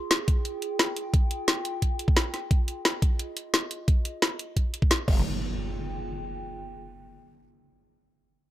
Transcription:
Already playing: ambient pad F4 G#4
0.06 ambient pad G5
0.11 snare, closed hi-hat
0.28 kick, closed hi-hat
0.45 closed hi-hat
0.62 closed hi-hat
0.79 snare, closed hi-hat
0.96 closed hi-hat
1.14 kick, closed hi-hat
1.31 closed hi-hat
1.48 snare, closed hi-hat
1.65 closed hi-hat
1.82 kick, closed hi-hat
1.99 closed hi-hat
2.08 kick
2.17 snare, closed hi-hat
2.34 snare, closed hi-hat
2.51 kick, closed hi-hat
2.68 closed hi-hat
2.80 ambient pad D#5
2.85 snare, closed hi-hat
3.02 kick, closed hi-hat
3.19 closed hi-hat
3.37 closed hi-hat
3.54 snare, closed hi-hat
3.71 closed hi-hat
3.88 kick, closed hi-hat
4.05 closed hi-hat
4.22 snare, closed hi-hat
4.39 closed hi-hat
4.57 kick, closed hi-hat
4.74 closed hi-hat
4.82 kick
4.91 snare, closed hi-hat
5.08 wobble bass F1, ambient pad F4, kick, crash, impact
5.13 ambient pad G#4
5.35 ambient pad G5

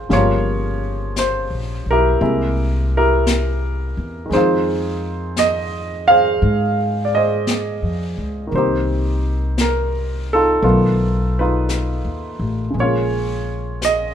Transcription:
Already playing: grand piano G#3 C4 F4 G#4 C5
0.09 upright bass G1, grand piano C#3 F3 G3 A#3 C#5, brush sweep, snare
0.14 grand piano F4 A#4
1.16 grand piano C5, brush sweep, snare, hi-hat pedal
1.50 upright bass A#1
1.86 upright bass B1
1.91 grand piano E4 G4 A#4
2.20 upright bass C2, grand piano C3 G#3 A#3 E4, brush sweep
2.97 grand piano E4 G4 A#4
3.27 brush sweep, snare, hi-hat pedal
3.97 upright bass E2
4.26 grand piano D#3 G#3
4.31 upright bass F2, grand piano C4 D#4 C5, brush sweep, snare
4.35 grand piano F4 G#4
5.36 grand piano D#5, brush sweep, snare, hi-hat pedal
6.08 grand piano G#4 C5 F5
6.41 upright bass G#2, brush sweep
7.05 grand piano D5
7.15 grand piano G#4 C5 D#5
7.47 brush sweep, snare, hi-hat pedal
7.82 upright bass F2
8.18 upright bass C#2
8.47 grand piano D#3 A#3
8.52 upright bass C2, grand piano C4 C5, brush sweep
8.57 grand piano D#4 G4
9.58 grand piano A#4, brush sweep, snare, hi-hat pedal
10.33 grand piano D#4 F4 A4
10.62 upright bass B1, grand piano D#3 A3 B3 F4, brush sweep
11.39 grand piano D#4 F4 B4
11.69 brush sweep, snare, hi-hat pedal
12.04 upright bass D#2
12.39 upright bass A1
12.70 upright bass A#1, grand piano C#3 G#3
12.75 grand piano A#3, brush sweep
12.80 grand piano C#4 F4 G#4 C#5
13.82 grand piano D#5, brush sweep, snare, hi-hat pedal

